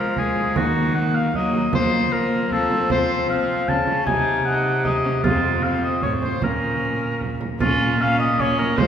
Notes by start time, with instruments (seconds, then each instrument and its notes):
Already playing: cello F3, viola G#3, oboe A#4
0.17 viola G#3, oboe G#4, frame drum
0.36 frame drum
0.56 cello D#3, viola A#3, oboe F#4, frame drum
0.95 viola A#3, oboe F#5
1.15 oboe F5
1.34 cello F#3, viola A#3, oboe D#5, frame drum
1.54 frame drum
1.73 cello F3, viola A#3, oboe C5, frame drum
2.12 viola A#3, oboe A#4
2.51 cello F3, viola C4, oboe A4, frame drum
2.70 frame drum
2.90 viola C4, oboe C5, frame drum
3.30 viola C4, oboe F5
3.68 cello C#3, viola C4, oboe A5, frame drum
3.87 viola C#4, frame drum
4.06 cello C3, viola D#4, oboe G#5, frame drum
4.45 viola D#4, oboe F#5
4.85 viola D#4, oboe D#5, frame drum
5.04 viola C#4, frame drum
5.24 cello F2, viola C4, oboe F4, frame drum
5.64 viola C4, oboe F5
5.83 oboe D#5
6.02 cello A2, oboe C#5, frame drum
6.22 oboe C5, frame drum
6.42 cello A#2, viola C#4, oboe A#4, frame drum
7.21 frame drum
7.41 frame drum
7.60 cello A#2, viola C#4, oboe F4, frame drum
8.01 viola C#4, oboe F5
8.19 oboe D#5
8.39 viola C#4, oboe C#5, frame drum
8.59 oboe A#4, frame drum
8.78 cello F3, viola G#3, oboe C5, frame drum